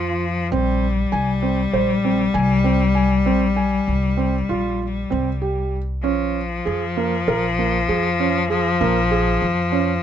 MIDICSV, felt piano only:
0, 0, Header, 1, 2, 480
1, 0, Start_track
1, 0, Tempo, 614125
1, 399, Time_signature, 9, 3, 24, 8
1, 7839, End_track
2, 0, Start_track
2, 0, Title_t, "Felt piano"
2, 0, Program_c, 0, 0
2, 0, Note_on_c, 0, 65, 73
2, 185, Note_off_c, 0, 65, 0
2, 405, Note_on_c, 0, 60, 77
2, 661, Note_off_c, 0, 60, 0
2, 876, Note_on_c, 0, 80, 78
2, 1006, Note_off_c, 0, 80, 0
2, 1112, Note_on_c, 0, 60, 66
2, 1242, Note_off_c, 0, 60, 0
2, 1356, Note_on_c, 0, 72, 81
2, 1484, Note_off_c, 0, 72, 0
2, 1597, Note_on_c, 0, 60, 69
2, 1725, Note_off_c, 0, 60, 0
2, 1830, Note_on_c, 0, 80, 79
2, 1959, Note_off_c, 0, 80, 0
2, 2063, Note_on_c, 0, 60, 74
2, 2194, Note_off_c, 0, 60, 0
2, 2305, Note_on_c, 0, 80, 65
2, 2436, Note_off_c, 0, 80, 0
2, 2546, Note_on_c, 0, 60, 80
2, 2677, Note_off_c, 0, 60, 0
2, 2786, Note_on_c, 0, 80, 63
2, 3047, Note_off_c, 0, 80, 0
2, 3260, Note_on_c, 0, 60, 66
2, 3393, Note_off_c, 0, 60, 0
2, 3511, Note_on_c, 0, 65, 81
2, 3773, Note_off_c, 0, 65, 0
2, 3989, Note_on_c, 0, 60, 68
2, 4122, Note_off_c, 0, 60, 0
2, 4234, Note_on_c, 0, 67, 64
2, 4497, Note_off_c, 0, 67, 0
2, 4717, Note_on_c, 0, 61, 80
2, 4980, Note_off_c, 0, 61, 0
2, 5201, Note_on_c, 0, 68, 67
2, 5333, Note_off_c, 0, 68, 0
2, 5447, Note_on_c, 0, 58, 69
2, 5577, Note_off_c, 0, 58, 0
2, 5690, Note_on_c, 0, 70, 77
2, 5820, Note_off_c, 0, 70, 0
2, 5929, Note_on_c, 0, 58, 58
2, 6058, Note_off_c, 0, 58, 0
2, 6164, Note_on_c, 0, 68, 70
2, 6294, Note_off_c, 0, 68, 0
2, 6407, Note_on_c, 0, 61, 66
2, 6536, Note_off_c, 0, 61, 0
2, 6643, Note_on_c, 0, 68, 67
2, 6773, Note_off_c, 0, 68, 0
2, 6882, Note_on_c, 0, 58, 81
2, 7012, Note_off_c, 0, 58, 0
2, 7121, Note_on_c, 0, 68, 67
2, 7379, Note_off_c, 0, 68, 0
2, 7598, Note_on_c, 0, 61, 69
2, 7727, Note_off_c, 0, 61, 0
2, 7839, End_track
0, 0, End_of_file